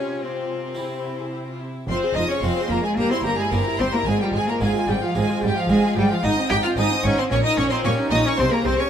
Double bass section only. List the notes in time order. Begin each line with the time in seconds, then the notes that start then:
1.88 F1
2.15 F1
2.42 F1
2.70 F1
2.97 G1
3.24 G1
3.52 G1
3.79 G1
4.06 G#1
4.34 G#1
4.61 G#1
4.88 G#1
5.16 G#1
5.43 G#1
5.69 G#1
5.97 G#1
6.23 G#1
6.50 G#1
6.77 G#1
7.04 G#1
7.31 A#1
7.57 A#1
7.84 A#1
8.11 A#1
8.38 C2
8.65 C2